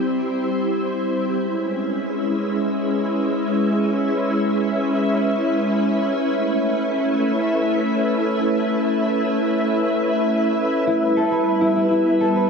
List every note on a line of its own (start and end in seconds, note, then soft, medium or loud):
0.00 1.36 G3 medium
0.00 1.36 C4 medium
0.00 12.50 E4 medium
0.00 1.36 C5 medium
0.00 12.50 E5 medium
1.36 6.11 G#3 medium
1.36 10.87 C#4 medium
1.51 12.50 B4 medium
6.11 10.87 A3 medium
10.87 12.50 G3 medium
10.87 11.61 E4 medium
11.12 12.50 B3 medium
11.16 12.20 A4 loud
11.31 12.35 B4 loud
11.61 11.76 E4 loud
11.76 11.90 E4 medium
11.91 12.50 E4 medium
12.20 12.50 A4 loud
12.35 12.50 B4 loud